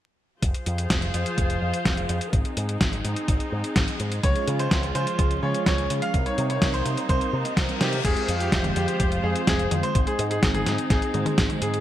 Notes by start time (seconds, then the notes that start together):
0.42 F1 F3 F4 G#4 C5, kick, closed hi-hat
0.54 closed hi-hat
0.66 F2, closed hi-hat
0.78 closed hi-hat
0.90 F1, kick, snare, closed hi-hat
1.02 closed hi-hat
1.14 F2, closed hi-hat
1.26 closed hi-hat
1.38 F1, kick, closed hi-hat
1.50 closed hi-hat
1.62 F2
1.74 closed hi-hat
1.85 F1, kick, snare, closed hi-hat
1.97 closed hi-hat
2.09 F2, closed hi-hat
2.21 closed hi-hat
2.33 G#1 G#3 C4 D#4, kick, closed hi-hat
2.45 closed hi-hat
2.57 G#2, closed hi-hat
2.69 closed hi-hat
2.81 G#1, kick, snare, closed hi-hat
2.93 closed hi-hat
3.04 G#2, closed hi-hat
3.16 closed hi-hat
3.28 G#1, kick, closed hi-hat
3.40 closed hi-hat
3.52 G#2
3.64 closed hi-hat
3.76 G#1, kick, snare, closed hi-hat
3.88 closed hi-hat
4.00 G#2, closed hi-hat
4.12 closed hi-hat
4.23 C#2 F3 G#3 C#4 F4 G#4 C#5, kick, closed hi-hat
4.36 closed hi-hat
4.47 C#3, closed hi-hat
4.59 C5, closed hi-hat
4.71 C#2, kick, snare, closed hi-hat
4.83 closed hi-hat
4.95 C#3 C5, closed hi-hat
5.07 closed hi-hat
5.19 C#2, kick, closed hi-hat
5.31 closed hi-hat
5.43 C#3 F3 G#3 C#4 G#4 C#5
5.55 closed hi-hat
5.66 C#2 C#5, kick, snare, closed hi-hat
5.78 closed hi-hat
5.90 C#3, closed hi-hat
6.02 F5, closed hi-hat
6.14 C2 G3 A#3 C4 D#4 A#4, kick, closed hi-hat
6.26 C#5, closed hi-hat
6.38 C3, closed hi-hat
6.50 C#5, closed hi-hat
6.62 C2, kick, snare, closed hi-hat
6.74 C5, closed hi-hat
6.85 C3, closed hi-hat
6.97 closed hi-hat
7.09 C2 C5, kick, closed hi-hat, reverse cymbal
7.21 closed hi-hat
7.33 C3
7.45 G3 C4 D#4 D#5, closed hi-hat
7.57 C2 G3 C4 D#4 C5, kick, snare, closed hi-hat
7.69 G3 C4 D#4 A#4, closed hi-hat
7.81 C3 G4, snare, closed hi-hat
7.93 closed hi-hat
8.04 F1 F3 G#3 C4 F4 G#4 C5, kick, closed hi-hat, crash
8.17 closed hi-hat
8.28 F2, closed hi-hat
8.40 G4, closed hi-hat
8.52 F1, kick, snare, closed hi-hat
8.64 closed hi-hat, high tom
8.76 F2 G4, closed hi-hat
8.88 closed hi-hat
9.00 F1, kick, closed hi-hat
9.12 closed hi-hat
9.24 F2 G#3 C4 F4 G#4 C5
9.36 closed hi-hat
9.47 F1 G#4, kick, snare, closed hi-hat
9.59 closed hi-hat
9.71 F2, closed hi-hat, high tom
9.83 C5, closed hi-hat
9.95 G#1 G#3 C4 D#4 C5, kick, closed hi-hat
10.07 G#4, closed hi-hat
10.19 G#2, closed hi-hat
10.30 G#4, closed hi-hat
10.43 G#1, kick, snare, closed hi-hat
10.54 G#4, closed hi-hat, high tom
10.66 G#2, snare, closed hi-hat
10.78 closed hi-hat
10.90 G#1 G#4, kick, snare, closed hi-hat
11.02 closed hi-hat
11.14 G#2 G#3 C4 D#4 C5, closed hi-hat, high tom
11.26 closed hi-hat, high tom
11.38 G#1, kick, snare, closed hi-hat
11.50 closed hi-hat, high tom
11.62 G#2 G#4, closed hi-hat
11.74 closed hi-hat